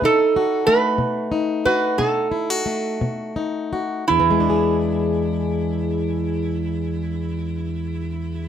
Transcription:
<<
  \new Staff \with { instrumentName = "Resonator guitar played with a steel bar" } { \time 12/8 \key e \mixolydian \tempo 4. = 54 a'4 b'4. b'8 a'2 r4 | e'1. | }
  \new Staff \with { instrumentName = "Steel-string acoustic guitar" } { \time 12/8 \key e \mixolydian << { dis'8 fis'8 a4 dis'8 fis'8 dis'8 e'16 fis'16 a4 dis'8 fis'8 | <e gis d' gis'>1. | } \\ { b,4 r8 b,4 r8 b,4 r8 b,4 r8 | e,1. | } >> }
>>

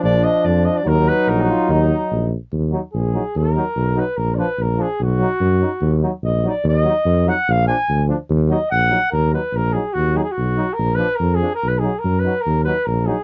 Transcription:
<<
  \new Staff \with { instrumentName = "Flugelhorn" } { \time 2/4 \key ees \minor \tempo 4 = 145 d''8 ees''8 d''8 ees''16 d''16 | bes'8 ces''8 bes'16 ges'16 f'8 | ees'4. r8 | r4 aes'4 |
bes'4. ces''8 | bes'16. d''32 ces''8 bes'8 aes'8 | fis'2~ | fis'8 r8 ees''8 d''8 |
ees''4. ges''8 | f''8 aes''4 r8 | r8 ees''8 ges''4 | bes'8 ces''8 bes'8 aes'8 |
ges'8 aes'16 aes'16 ges'4 | bes'8 ces''8 bes'8 aes'8 | bes'16 b'16 aes'8 bes'8 b'8 | bes'8 ces''8 bes'8 aes'8 | }
  \new Staff \with { instrumentName = "Trombone" } { \time 2/4 \key ees \minor d'2 | ees'2~ | ees'4. r8 | r8 ees'8 r8 ees'8 |
r8 ees'8 r8 ees'8 | r8 d'8 r8 d'8 | r8 dis'8 r8 dis'8 | r8 ees'8 r8 ees'8 |
r8 ees'8 r8 ees'8 | r8 d'8 r8 d'8 | r8 ees'8 r8 ees'8 | r8 ees'8 r8 ees'8 |
r8 ees'8 r8 ees'8 | r8 d'8 r8 d'8 | r8 dis'8 r8 dis'8 | r8 ees'8 r8 ees'8 | }
  \new Staff \with { instrumentName = "Euphonium" } { \clef bass \time 2/4 \key ees \minor f2 | ges2~ | ges4. r8 | r8 ges8 r8 ges8 |
r8 ges8 r8 ges8 | r8 f8 r8 f8 | r8 fis8 r8 fis8 | r8 ges8 r8 ges8 |
r8 ges8 r8 ges8 | r8 f8 r8 f8 | r8 ges8 r8 ges8 | r8 ges8 r8 ges8 |
r8 ges8 r8 ges8 | r8 f8 r8 f8 | r8 fis8 r8 fis8 | r8 ges8 r8 ges8 | }
  \new Staff \with { instrumentName = "Tuba" } { \clef bass \time 2/4 \key ees \minor bes,,4 f,4 | ees,4 bes,,4 | ees,4 bes,,4 | ees,4 bes,,4 |
ees,4 ces,4 | bes,,4 bes,,4 | b,,4 fis,4 | ees,4 bes,,4 |
ees,4 f,4 | bes,,4 d,4 | ees,4 bes,,4 | ees,4 bes,,4 |
ees,4 ces,4 | bes,,4 f,4 | b,,4 fis,4 | ees,4 bes,,4 | }
>>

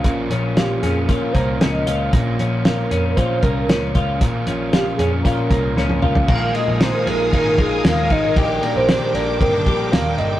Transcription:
<<
  \new Staff \with { instrumentName = "String machine" } { \time 4/4 \key bes \dorian \tempo 4 = 116 << { r1 | r1 | r1 | \key bes \mixolydian <f'' aes'' ees'''>1 |
<g'' d'''>1 | } \\ { r1 | r1 | r1 | bes'1~ |
bes'1 | } >> }
  \new Staff \with { instrumentName = "Soft synth lead" } { \time 4/4 \key bes \dorian r4 g'8 aes'8 bes'8 c''8 ees''8. r16 | r4 bes'4 c''8 bes'4 r8 | r4 g'8 aes'8 bes'4 bes'8 bes'8 | \key bes \mixolydian f''8 ees''8 c''8 bes'8 bes'8 aes'8 f''8 ees''8~ |
ees''8 d''16 c''8. d''8 bes'4 f''8 ees''8 | }
  \new Staff \with { instrumentName = "Clean electric guitar" } { \time 4/4 \key bes \dorian <bes, bes des' f'>8 des'8 f'8 des'8 f'8 bes8 des'8 f'8 | bes,8 des'8 f'8 des'8 f'8 bes8 des'8 f'8 | bes,8 des'8 f'8 des'8 f'8 bes8 des'8 f'8 | \key bes \mixolydian <bes, f'>8 aes8 ees'8 aes8 ees'8 f'8 aes8 ees'8 |
<bes, g'>8 bes8 d'8 bes8 c'16 d'16 g'8 bes4 | }
  \new Staff \with { instrumentName = "Overdriven electric guitar" } { \time 4/4 \key bes \dorian <bes, f bes des' f'>8 <bes des' f'>8 <f bes des' f'>8 <bes des' f'>8 <bes, f bes des' f'>8 <bes des' f'>8 <f bes des' f'>8 <bes des' f'>8 | <bes, f bes des' f'>8 <bes des' f'>8 <f bes des' f'>8 <bes des' f'>8 <bes, f bes des' f'>8 <bes des' f'>8 <f bes des' f'>8 <bes des' f'>8 | <bes, f bes des' f'>8 <bes des' f'>8 <f bes des' f'>8 <bes des' f'>8 <bes, f bes des' f'>8 <bes des' f'>8 <f bes des' f'>8 <bes des' f'>8 | \key bes \mixolydian <bes, ees aes ees' f'>8 <aes ees' f'>8 <ees aes ees' f'>8 <aes ees' f'>8 <bes, ees aes ees' f'>8 <aes ees' f'>8 <ees aes ees' f'>8 <aes ees' f'>8 |
<bes, ees g bes d'>8 <g bes d'>8 <ees g bes d'>8 <g bes d'>8 <bes, ees g bes d'>8 <g bes d'>8 <ees g bes d'>8 <g bes d'>8 | }
  \new Staff \with { instrumentName = "Picked electric bass" } { \clef bass \time 4/4 \key bes \dorian bes,,8 bes,,4 f,8 bes,8 c,8 des,8 des,8 | bes,,8 bes,,4 f,8 bes,8 c,8 des,8 des,8 | bes,,8 bes,,4 f,8 bes,8 c,8 des,8 des,8 | \key bes \mixolydian bes,,8 r16 bes,,8 r16 bes,,8 aes,,8 bes,,8 ees,8 aes,,8 |
bes,,8 r16 bes,,8 r16 bes,,8 g,,8 bes,,8 ees,8 g,,8 | }
  \new DrumStaff \with { instrumentName = "Drums" } \drummode { \time 4/4 <hh bd>8 hh8 <hh sn>8 hh8 <hh bd>8 <hh bd>8 <hh sn>8 hh8 | <hh bd>8 hh8 <hh sn>8 hh8 <hh bd>8 <hh bd>8 <hh sn>8 <hh bd>8 | <hh bd>8 hh8 <hh sn>8 hh8 <hh bd>8 <hh bd>8 sn16 tommh16 toml16 tomfh16 | <cymc bd>8 cymr8 <cymr sn>8 cymr8 <bd cymr>8 <bd cymr>8 <cymr sn>8 <bd cymr>8 |
<bd cymr>8 cymr8 <cymr sn>8 cymr8 <bd cymr>8 <bd cymr>8 <cymr sn>8 cymr8 | }
>>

